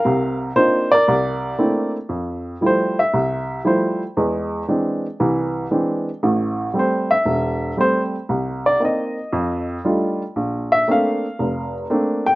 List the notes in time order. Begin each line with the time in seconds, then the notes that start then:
Already playing: A#4 F5
0.05 C2 C3
0.56 A#3 C4 D4 D#4 F4 C5
0.92 A#4 D5
1.08 C2
1.58 A3 A#3 C4 D4 E4
2.09 F2
2.61 F3 G3 A3 E4
2.66 C5
2.99 E5
3.14 C2
3.65 F3 G3 A3 E4 C5
4.17 E2 G#3
4.68 E3 G#3 C4 D4
5.20 C2 E3
5.71 E3 G#3 C4 D4
6.23 A1 A2
6.74 G3 A3 C4
6.79 C5
7.11 E5
7.25 E1
7.77 G3 A3 C4 C5
8.29 C2
8.66 D5
8.80 A#3 C4 D#4
8.85 D#5
9.33 F2
9.85 G3 A3 D4 D#4 F4
10.36 A#1
10.72 E5
10.88 A3 A#3 C4 D4 F5
11.39 F1
11.90 A3 A#3 C4 D4
12.26 G5